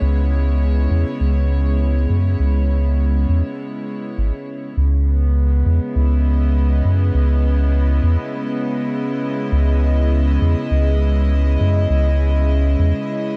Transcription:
Already playing: C#3 G#3 B3 E4 C#5
0.02 C#2
0.91 E2
1.20 C#2
2.10 F#2
2.39 C#2
3.29 E2
4.18 G#1
4.77 C#2 C#3
5.06 B3
5.26 G#3
5.66 E2
5.91 E4
5.96 C#2
6.18 D#5
6.85 F#2
7.14 C#2
8.03 E2
9.52 C#2
10.42 E2
10.71 C#2
11.61 F#2
11.90 C#2
12.79 E2

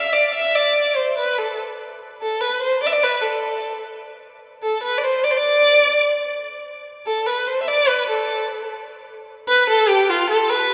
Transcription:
Already playing: E5
0.12 D5
0.34 E5
0.55 D5
0.96 C5
1.18 B4
1.38 A4
2.21 A4
2.41 B4
2.62 C5
2.82 D5
2.86 E5
2.93 D5
3.03 B4
3.22 A4
4.63 A4
4.83 B4
4.98 D5
5.04 C5
5.24 D5
5.31 C5
5.37 D5
7.06 A4
7.26 B4
7.47 C5
7.62 E5
7.68 D5
7.88 B4
8.09 A4
9.48 B4
9.70 A4
9.89 G4
10.09 F4
10.30 A4
10.49 B4

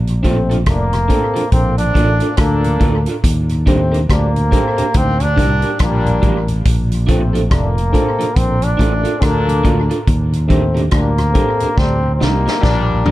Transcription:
Already playing: A#1
0.07 A#2 F3, closed hi-hat
0.23 C3 A3 A#3 C4 D4 F4 A4, kick, closed hi-hat
0.50 A#2 F3 D4 F4 A4, closed hi-hat
0.66 F1 A#2 A3 A#3 D4, kick, cross-stick, closed hi-hat
0.93 A#2 F3, cross-stick, closed hi-hat
1.08 C3 A3 A#3 C4 D4 F4 A4, kick, closed hi-hat
1.34 A#2 F3 D4 F4 A4, closed hi-hat
1.52 A#1 F2 D3 A#3 C4, kick, closed hi-hat
1.78 A#2 F3 D4, closed hi-hat
1.94 A1 A#2 A3 A#3 D4 F4 A4, kick, closed hi-hat
2.20 D4 F4 A4, closed hi-hat
2.37 D2 A#2 A#3 D4 A4, kick, cross-stick, closed hi-hat
2.64 A#2 F3, closed hi-hat
2.80 D2 A3 A#3 D4 F4 A4, kick, closed hi-hat
3.06 D4 F4 A4, closed hi-hat
3.24 D#2, kick, closed hi-hat
3.49 D#2 A#2, closed hi-hat
3.66 C3 D#3 G3 A3 C4 D4 G4 A#4, kick, closed hi-hat
3.92 D#2 A#2 D4 G4 A#4, closed hi-hat
4.09 D2 A#2 G3 A#3 D4, kick, cross-stick, closed hi-hat
4.36 D#2 A#2, closed hi-hat
4.51 C3 D#3 G3 C4 D4 G4 A4 A#4, kick, closed hi-hat
4.77 D#2 A#2 D4 G4 A#4, closed hi-hat
4.93 D2 G2 D#3 A#3, kick, closed hi-hat
4.97 C4
5.20 D#2 A#2 D4, closed hi-hat
5.36 C2 A#2 D#3 G3 D4 G4 A#4, kick, closed hi-hat
5.62 D4 G4 A#4, closed hi-hat
5.79 A#1 A#2 G3 A#3 D4, kick, cross-stick, closed hi-hat
6.04 D#2 A#2, closed hi-hat
6.22 A1 D#3 G3 D4 G4 A#4, kick, closed hi-hat
6.47 D#2 A#2, closed hi-hat
6.65 A#1, kick, closed hi-hat
6.91 A#2 F3, closed hi-hat
7.07 C3 A3 A#3 C4 D4 F4 A4, kick, closed hi-hat
7.33 A#2 F3 D4 F4 A4, closed hi-hat
7.49 F1 A#2 A3 A#3 D4, kick, cross-stick, closed hi-hat
7.75 A#2 F3, closed hi-hat
7.92 C3 A3 A#3 C4 D4 F4 A4, kick, closed hi-hat
8.18 A#2 F3 D4 F4 A4, closed hi-hat
8.35 A#1 F2 D3 A#3 C4, kick, closed hi-hat
8.61 A#2 F3 D4, closed hi-hat
8.77 A1 A#2 A3 A#3 D4 F4 A4, kick, closed hi-hat
9.03 D4 F4 A4, closed hi-hat
9.19 D2 A#2 D4 A4, kick, cross-stick, closed hi-hat
9.24 A#3
9.47 A#2 F3, closed hi-hat
9.64 D2 A3 A#3 D4 F4 A4, kick, closed hi-hat
9.90 D4 F4 A4, closed hi-hat
10.07 D#2, kick, closed hi-hat
10.32 D#2 A#2, closed hi-hat
10.48 C3 D#3 G3 A3 C4 D4 G4 A#4, kick, closed hi-hat
10.75 D#2 A#2 D4 G4 A#4, closed hi-hat
10.91 D2 A#2 G3 A#3 D4, kick, cross-stick, closed hi-hat
11.17 D#2 A#2, cross-stick, closed hi-hat
11.33 C3 D#3 G3 C4 D4 G4 A4 A#4, kick, closed hi-hat
11.60 D#2 A#2 D4 G4 A#4, closed hi-hat
11.75 D2 A#2 G3 C4 D4, kick, snare
12.03 D#2 A#2
12.16 A#2 G3 C4 D#4
12.21 C2 D#3 G3 A#3 D4 G4 A#4, snare
12.46 D4 G4 A#4, snare
12.60 A#1 A#2 G3 D4, kick, snare
12.90 D#2 A#2
13.05 A1 D#3 G3 D4 G4 A#4, floor tom

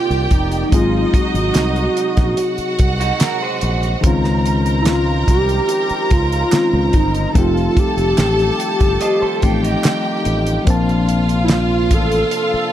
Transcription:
Already playing: C3 D#3 A#3 C4 F4 G4 D5 G5
0.10 C2, closed hi-hat
0.26 F4
0.31 F1 D#4, kick, closed hi-hat
0.52 closed hi-hat
0.69 G#1 F#3 G#3 C4 D#4 D#5, kick, closed hi-hat
0.73 D#4 F4 G#4
1.14 F#4, kick, closed hi-hat
1.34 G#1, closed hi-hat
1.54 C2, snare, clap, closed hi-hat
1.76 closed hi-hat
1.97 closed hi-hat
2.17 A#1, kick, snare, closed hi-hat
2.37 F#4 F#5, closed hi-hat
2.58 muted fingered electric bass stroke, closed hi-hat
2.79 C2, kick, closed hi-hat
3.00 D#4 F#4, closed hi-hat
3.20 F#4 A#4, snare, clap, closed hi-hat
3.42 G#4 C5
3.61 A#1, closed hi-hat
3.83 closed hi-hat
4.01 C#2 D#3 F3 G#3 C4 A#4 C5 A#5, kick, closed hi-hat
4.05 C#4 F4
4.24 snare, closed hi-hat
4.46 closed hi-hat
4.66 closed hi-hat
4.82 E4, closed hi-hat
4.87 F4, snare, clap
5.28 C2 G4, kick, closed hi-hat
5.49 closed hi-hat
5.69 closed hi-hat
5.89 muted fingered electric bass stroke, closed hi-hat
6.10 C#2 F4, kick, closed hi-hat
6.32 closed hi-hat
6.52 D#3 G#3 C4 C#4 F4, snare, clap, closed hi-hat
6.73 C#2
6.93 G1 D#4, kick, closed hi-hat
7.15 closed hi-hat
7.33 F1 D#3 F3 G3 A3 C4 D#4 F4 A4 A5, kick, closed hi-hat
7.39 G4
7.57 closed hi-hat
7.77 G4, kick, closed hi-hat
7.97 F1, closed hi-hat
8.17 A1, snare, clap, closed hi-hat
8.39 closed hi-hat
8.60 closed hi-hat
8.80 G1, kick, closed hi-hat
9.01 C5 D#5, closed hi-hat
9.22 A4 C5, muted fingered electric bass stroke
9.42 A1 F3 A3 C4 D#4 F4 G4 A4 G5, kick, closed hi-hat
9.63 D#4 G4, closed hi-hat
9.84 snare, clap, closed hi-hat
10.25 A1, closed hi-hat
10.47 closed hi-hat
10.65 A#1 C3 F3 A#3 C4 D4 F4 F5, kick, closed hi-hat
10.69 D4 A5
10.89 closed hi-hat
11.09 closed hi-hat
11.29 closed hi-hat
11.44 E4
11.48 F4, snare, clap, closed hi-hat
11.91 A1 A4, kick, closed hi-hat
12.12 closed hi-hat
12.31 closed hi-hat
12.36 A4
12.54 muted fingered electric bass stroke

